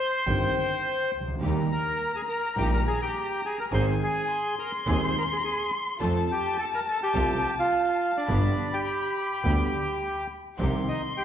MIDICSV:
0, 0, Header, 1, 6, 480
1, 0, Start_track
1, 0, Key_signature, -3, "minor"
1, 0, Tempo, 573066
1, 1190, Time_signature, 4, 2, 24, 8
1, 9419, End_track
2, 0, Start_track
2, 0, Title_t, "Violin"
2, 0, Program_c, 0, 40
2, 0, Note_on_c, 0, 84, 85
2, 221, Note_on_c, 0, 79, 69
2, 234, Note_off_c, 0, 84, 0
2, 947, Note_off_c, 0, 79, 0
2, 1193, Note_on_c, 0, 82, 85
2, 3116, Note_on_c, 0, 80, 80
2, 3129, Note_off_c, 0, 82, 0
2, 3585, Note_on_c, 0, 84, 104
2, 3598, Note_off_c, 0, 80, 0
2, 5026, Note_on_c, 0, 81, 95
2, 5039, Note_off_c, 0, 84, 0
2, 6926, Note_off_c, 0, 81, 0
2, 6931, Note_on_c, 0, 83, 81
2, 8587, Note_off_c, 0, 83, 0
2, 8871, Note_on_c, 0, 84, 99
2, 9419, Note_off_c, 0, 84, 0
2, 9419, End_track
3, 0, Start_track
3, 0, Title_t, "Bandoneon"
3, 0, Program_c, 1, 23
3, 0, Note_on_c, 1, 72, 78
3, 0, Note_on_c, 1, 84, 100
3, 931, Note_off_c, 1, 72, 0
3, 932, Note_off_c, 1, 84, 0
3, 1443, Note_on_c, 1, 82, 81
3, 1447, Note_on_c, 1, 70, 58
3, 1772, Note_off_c, 1, 82, 0
3, 1774, Note_off_c, 1, 70, 0
3, 1803, Note_on_c, 1, 80, 73
3, 1808, Note_on_c, 1, 68, 55
3, 1854, Note_off_c, 1, 80, 0
3, 1858, Note_off_c, 1, 68, 0
3, 1913, Note_on_c, 1, 82, 73
3, 1916, Note_on_c, 1, 70, 60
3, 2136, Note_off_c, 1, 82, 0
3, 2137, Note_off_c, 1, 70, 0
3, 2159, Note_on_c, 1, 79, 70
3, 2165, Note_on_c, 1, 67, 51
3, 2267, Note_off_c, 1, 79, 0
3, 2270, Note_off_c, 1, 67, 0
3, 2290, Note_on_c, 1, 82, 76
3, 2292, Note_on_c, 1, 70, 56
3, 2340, Note_off_c, 1, 82, 0
3, 2342, Note_off_c, 1, 70, 0
3, 2406, Note_on_c, 1, 80, 75
3, 2412, Note_on_c, 1, 68, 54
3, 2515, Note_off_c, 1, 68, 0
3, 2522, Note_off_c, 1, 80, 0
3, 2530, Note_on_c, 1, 79, 77
3, 2534, Note_on_c, 1, 67, 55
3, 2858, Note_off_c, 1, 67, 0
3, 2891, Note_off_c, 1, 79, 0
3, 2894, Note_on_c, 1, 68, 60
3, 2895, Note_on_c, 1, 80, 74
3, 2995, Note_off_c, 1, 68, 0
3, 3006, Note_off_c, 1, 80, 0
3, 3007, Note_on_c, 1, 82, 76
3, 3013, Note_on_c, 1, 70, 60
3, 3057, Note_off_c, 1, 82, 0
3, 3062, Note_off_c, 1, 70, 0
3, 3131, Note_on_c, 1, 84, 94
3, 3134, Note_on_c, 1, 72, 70
3, 3234, Note_off_c, 1, 84, 0
3, 3237, Note_off_c, 1, 72, 0
3, 3378, Note_on_c, 1, 68, 69
3, 3381, Note_on_c, 1, 80, 84
3, 3811, Note_off_c, 1, 68, 0
3, 3812, Note_off_c, 1, 80, 0
3, 3847, Note_on_c, 1, 70, 61
3, 3847, Note_on_c, 1, 82, 82
3, 3951, Note_off_c, 1, 70, 0
3, 3951, Note_off_c, 1, 82, 0
3, 4095, Note_on_c, 1, 80, 74
3, 4098, Note_on_c, 1, 68, 58
3, 4195, Note_off_c, 1, 68, 0
3, 4204, Note_off_c, 1, 80, 0
3, 4213, Note_on_c, 1, 72, 63
3, 4217, Note_on_c, 1, 84, 82
3, 4312, Note_off_c, 1, 72, 0
3, 4325, Note_off_c, 1, 84, 0
3, 4339, Note_on_c, 1, 82, 72
3, 4340, Note_on_c, 1, 70, 58
3, 4386, Note_off_c, 1, 70, 0
3, 4386, Note_off_c, 1, 82, 0
3, 4457, Note_on_c, 1, 68, 50
3, 4463, Note_on_c, 1, 80, 61
3, 4496, Note_on_c, 1, 82, 55
3, 4497, Note_off_c, 1, 68, 0
3, 4501, Note_off_c, 1, 80, 0
3, 4549, Note_off_c, 1, 82, 0
3, 4562, Note_on_c, 1, 68, 51
3, 4562, Note_on_c, 1, 80, 62
3, 4779, Note_off_c, 1, 68, 0
3, 4779, Note_off_c, 1, 80, 0
3, 5289, Note_on_c, 1, 79, 85
3, 5294, Note_on_c, 1, 67, 65
3, 5499, Note_off_c, 1, 79, 0
3, 5502, Note_off_c, 1, 67, 0
3, 5515, Note_on_c, 1, 81, 93
3, 5523, Note_on_c, 1, 69, 78
3, 5566, Note_off_c, 1, 81, 0
3, 5572, Note_off_c, 1, 69, 0
3, 5648, Note_on_c, 1, 82, 91
3, 5654, Note_on_c, 1, 70, 74
3, 5695, Note_off_c, 1, 82, 0
3, 5700, Note_off_c, 1, 70, 0
3, 5764, Note_on_c, 1, 81, 91
3, 5768, Note_on_c, 1, 69, 69
3, 5864, Note_off_c, 1, 81, 0
3, 5866, Note_off_c, 1, 69, 0
3, 5887, Note_on_c, 1, 79, 92
3, 5892, Note_on_c, 1, 67, 75
3, 6320, Note_off_c, 1, 79, 0
3, 6323, Note_off_c, 1, 67, 0
3, 6359, Note_on_c, 1, 77, 79
3, 6367, Note_on_c, 1, 65, 64
3, 6799, Note_off_c, 1, 65, 0
3, 6842, Note_off_c, 1, 77, 0
3, 6843, Note_on_c, 1, 62, 62
3, 6845, Note_on_c, 1, 74, 78
3, 7277, Note_off_c, 1, 62, 0
3, 7317, Note_on_c, 1, 67, 66
3, 7317, Note_on_c, 1, 79, 84
3, 7325, Note_off_c, 1, 74, 0
3, 8600, Note_off_c, 1, 67, 0
3, 8600, Note_off_c, 1, 79, 0
3, 9119, Note_on_c, 1, 75, 74
3, 9126, Note_on_c, 1, 63, 58
3, 9225, Note_off_c, 1, 75, 0
3, 9231, Note_off_c, 1, 63, 0
3, 9360, Note_on_c, 1, 79, 88
3, 9363, Note_on_c, 1, 67, 64
3, 9412, Note_off_c, 1, 79, 0
3, 9415, Note_off_c, 1, 67, 0
3, 9419, End_track
4, 0, Start_track
4, 0, Title_t, "String section"
4, 0, Program_c, 2, 48
4, 1189, Note_on_c, 2, 58, 67
4, 1191, Note_on_c, 2, 63, 58
4, 1194, Note_on_c, 2, 67, 76
4, 1392, Note_off_c, 2, 58, 0
4, 1393, Note_off_c, 2, 63, 0
4, 1394, Note_off_c, 2, 67, 0
4, 2150, Note_on_c, 2, 58, 70
4, 2154, Note_on_c, 2, 63, 65
4, 2156, Note_on_c, 2, 67, 73
4, 2353, Note_off_c, 2, 58, 0
4, 2355, Note_off_c, 2, 63, 0
4, 2356, Note_off_c, 2, 67, 0
4, 3111, Note_on_c, 2, 60, 73
4, 3112, Note_on_c, 2, 63, 65
4, 3114, Note_on_c, 2, 68, 76
4, 3312, Note_off_c, 2, 60, 0
4, 3312, Note_off_c, 2, 63, 0
4, 3313, Note_off_c, 2, 68, 0
4, 4067, Note_on_c, 2, 63, 66
4, 4068, Note_on_c, 2, 60, 71
4, 4069, Note_on_c, 2, 68, 77
4, 4268, Note_off_c, 2, 63, 0
4, 4269, Note_off_c, 2, 60, 0
4, 4269, Note_off_c, 2, 68, 0
4, 5025, Note_on_c, 2, 60, 73
4, 5026, Note_on_c, 2, 65, 68
4, 5028, Note_on_c, 2, 69, 81
4, 5226, Note_off_c, 2, 60, 0
4, 5226, Note_off_c, 2, 65, 0
4, 5228, Note_off_c, 2, 69, 0
4, 5982, Note_on_c, 2, 60, 74
4, 5983, Note_on_c, 2, 65, 70
4, 5986, Note_on_c, 2, 69, 81
4, 6182, Note_off_c, 2, 60, 0
4, 6183, Note_off_c, 2, 65, 0
4, 6184, Note_off_c, 2, 69, 0
4, 6941, Note_on_c, 2, 59, 68
4, 6942, Note_on_c, 2, 62, 63
4, 6946, Note_on_c, 2, 67, 78
4, 7141, Note_off_c, 2, 59, 0
4, 7141, Note_off_c, 2, 62, 0
4, 7143, Note_off_c, 2, 67, 0
4, 7900, Note_on_c, 2, 59, 68
4, 7903, Note_on_c, 2, 62, 64
4, 7905, Note_on_c, 2, 67, 77
4, 8102, Note_off_c, 2, 59, 0
4, 8103, Note_off_c, 2, 62, 0
4, 8105, Note_off_c, 2, 67, 0
4, 8872, Note_on_c, 2, 60, 63
4, 8873, Note_on_c, 2, 63, 62
4, 8876, Note_on_c, 2, 67, 78
4, 9072, Note_off_c, 2, 60, 0
4, 9073, Note_off_c, 2, 63, 0
4, 9074, Note_off_c, 2, 67, 0
4, 9419, End_track
5, 0, Start_track
5, 0, Title_t, "Grand piano"
5, 0, Program_c, 3, 0
5, 219, Note_on_c, 3, 51, 61
5, 222, Note_on_c, 3, 43, 69
5, 222, Note_on_c, 3, 55, 52
5, 223, Note_on_c, 3, 31, 70
5, 223, Note_on_c, 3, 67, 61
5, 225, Note_on_c, 3, 60, 54
5, 424, Note_off_c, 3, 51, 0
5, 426, Note_off_c, 3, 31, 0
5, 426, Note_off_c, 3, 43, 0
5, 426, Note_off_c, 3, 55, 0
5, 426, Note_off_c, 3, 67, 0
5, 427, Note_off_c, 3, 60, 0
5, 1008, Note_on_c, 3, 36, 40
5, 1068, Note_on_c, 3, 37, 50
5, 1069, Note_off_c, 3, 36, 0
5, 1129, Note_off_c, 3, 37, 0
5, 1132, Note_on_c, 3, 38, 62
5, 1178, Note_on_c, 3, 51, 64
5, 1178, Note_on_c, 3, 55, 57
5, 1178, Note_on_c, 3, 58, 55
5, 1180, Note_on_c, 3, 67, 65
5, 1181, Note_on_c, 3, 39, 69
5, 1191, Note_off_c, 3, 38, 0
5, 1386, Note_off_c, 3, 55, 0
5, 1386, Note_off_c, 3, 58, 0
5, 1387, Note_off_c, 3, 51, 0
5, 1387, Note_off_c, 3, 67, 0
5, 1388, Note_off_c, 3, 39, 0
5, 2143, Note_on_c, 3, 55, 54
5, 2145, Note_on_c, 3, 51, 58
5, 2146, Note_on_c, 3, 46, 69
5, 2147, Note_on_c, 3, 58, 51
5, 2149, Note_on_c, 3, 34, 68
5, 2152, Note_on_c, 3, 67, 69
5, 2349, Note_off_c, 3, 55, 0
5, 2350, Note_off_c, 3, 51, 0
5, 2351, Note_off_c, 3, 46, 0
5, 2351, Note_off_c, 3, 58, 0
5, 2352, Note_off_c, 3, 34, 0
5, 2354, Note_off_c, 3, 67, 0
5, 3113, Note_on_c, 3, 51, 63
5, 3117, Note_on_c, 3, 60, 59
5, 3118, Note_on_c, 3, 32, 73
5, 3119, Note_on_c, 3, 44, 70
5, 3119, Note_on_c, 3, 56, 59
5, 3119, Note_on_c, 3, 68, 69
5, 3313, Note_off_c, 3, 51, 0
5, 3315, Note_off_c, 3, 32, 0
5, 3315, Note_off_c, 3, 60, 0
5, 3316, Note_off_c, 3, 44, 0
5, 3316, Note_off_c, 3, 56, 0
5, 3316, Note_off_c, 3, 68, 0
5, 4073, Note_on_c, 3, 56, 57
5, 4075, Note_on_c, 3, 27, 74
5, 4075, Note_on_c, 3, 51, 64
5, 4076, Note_on_c, 3, 60, 57
5, 4077, Note_on_c, 3, 39, 72
5, 4077, Note_on_c, 3, 68, 66
5, 4271, Note_off_c, 3, 56, 0
5, 4272, Note_off_c, 3, 27, 0
5, 4272, Note_off_c, 3, 51, 0
5, 4273, Note_off_c, 3, 39, 0
5, 4273, Note_off_c, 3, 60, 0
5, 4273, Note_off_c, 3, 68, 0
5, 5028, Note_on_c, 3, 57, 61
5, 5030, Note_on_c, 3, 41, 75
5, 5030, Note_on_c, 3, 53, 75
5, 5033, Note_on_c, 3, 60, 60
5, 5035, Note_on_c, 3, 69, 71
5, 5227, Note_off_c, 3, 57, 0
5, 5229, Note_off_c, 3, 41, 0
5, 5230, Note_off_c, 3, 53, 0
5, 5230, Note_off_c, 3, 60, 0
5, 5231, Note_off_c, 3, 69, 0
5, 5986, Note_on_c, 3, 36, 72
5, 5986, Note_on_c, 3, 53, 64
5, 5988, Note_on_c, 3, 48, 69
5, 5988, Note_on_c, 3, 60, 54
5, 5990, Note_on_c, 3, 57, 58
5, 5992, Note_on_c, 3, 69, 67
5, 6184, Note_off_c, 3, 36, 0
5, 6185, Note_off_c, 3, 48, 0
5, 6185, Note_off_c, 3, 53, 0
5, 6186, Note_off_c, 3, 57, 0
5, 6186, Note_off_c, 3, 60, 0
5, 6187, Note_off_c, 3, 69, 0
5, 6941, Note_on_c, 3, 50, 66
5, 6942, Note_on_c, 3, 31, 74
5, 6944, Note_on_c, 3, 55, 57
5, 6945, Note_on_c, 3, 43, 68
5, 6945, Note_on_c, 3, 59, 58
5, 6945, Note_on_c, 3, 67, 68
5, 7140, Note_off_c, 3, 50, 0
5, 7141, Note_off_c, 3, 31, 0
5, 7142, Note_off_c, 3, 43, 0
5, 7142, Note_off_c, 3, 55, 0
5, 7143, Note_off_c, 3, 59, 0
5, 7143, Note_off_c, 3, 67, 0
5, 7908, Note_on_c, 3, 50, 62
5, 7909, Note_on_c, 3, 55, 50
5, 7909, Note_on_c, 3, 59, 55
5, 7910, Note_on_c, 3, 38, 63
5, 7911, Note_on_c, 3, 67, 65
5, 8106, Note_off_c, 3, 50, 0
5, 8106, Note_off_c, 3, 55, 0
5, 8106, Note_off_c, 3, 59, 0
5, 8107, Note_off_c, 3, 38, 0
5, 8107, Note_off_c, 3, 67, 0
5, 8872, Note_on_c, 3, 51, 64
5, 8873, Note_on_c, 3, 48, 72
5, 8874, Note_on_c, 3, 55, 58
5, 8875, Note_on_c, 3, 36, 75
5, 8877, Note_on_c, 3, 60, 54
5, 8878, Note_on_c, 3, 67, 69
5, 9072, Note_off_c, 3, 51, 0
5, 9073, Note_off_c, 3, 48, 0
5, 9073, Note_off_c, 3, 55, 0
5, 9074, Note_off_c, 3, 36, 0
5, 9075, Note_off_c, 3, 60, 0
5, 9075, Note_off_c, 3, 67, 0
5, 9419, End_track
6, 0, Start_track
6, 0, Title_t, "Double bass"
6, 0, Program_c, 4, 43
6, 224, Note_on_c, 4, 31, 82
6, 427, Note_off_c, 4, 31, 0
6, 951, Note_on_c, 4, 37, 46
6, 1185, Note_off_c, 4, 37, 0
6, 1190, Note_on_c, 4, 39, 76
6, 1392, Note_off_c, 4, 39, 0
6, 2151, Note_on_c, 4, 34, 80
6, 2353, Note_off_c, 4, 34, 0
6, 3113, Note_on_c, 4, 32, 83
6, 3313, Note_off_c, 4, 32, 0
6, 4073, Note_on_c, 4, 39, 84
6, 4271, Note_off_c, 4, 39, 0
6, 5031, Note_on_c, 4, 41, 81
6, 5229, Note_off_c, 4, 41, 0
6, 5981, Note_on_c, 4, 36, 90
6, 6182, Note_off_c, 4, 36, 0
6, 6942, Note_on_c, 4, 31, 85
6, 7141, Note_off_c, 4, 31, 0
6, 7905, Note_on_c, 4, 38, 79
6, 8104, Note_off_c, 4, 38, 0
6, 8870, Note_on_c, 4, 36, 83
6, 9071, Note_off_c, 4, 36, 0
6, 9419, End_track
0, 0, End_of_file